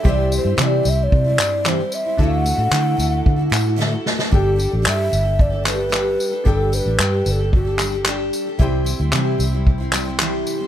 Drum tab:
TB |--x---x---x---x-|--x---x---x-----|--x---x---x---x-|--x---x---x---x-|
CP |----x-----x-x---|----x-----x-----|----x-----x-x---|----x-----x-x---|
SD |----------------|------------o-oo|----------------|----------------|
BD |o-------o-------|o-------o-------|o-------o-------|o-------o-------|

TB |--x---x---x---x-|
CP |----x-----x-x---|
SD |----------------|
BD |o-------o-------|